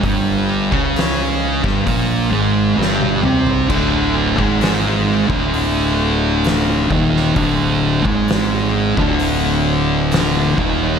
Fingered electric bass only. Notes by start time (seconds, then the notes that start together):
0.03 G1
0.73 C#2
1.64 G1
1.87 A#1
2.32 G#1
2.78 G1
3.24 C2
3.70 D1
4.39 G#1
5.29 D1
6.91 D#1
7.36 D1
8.05 G#1
8.98 D1
10.58 D#1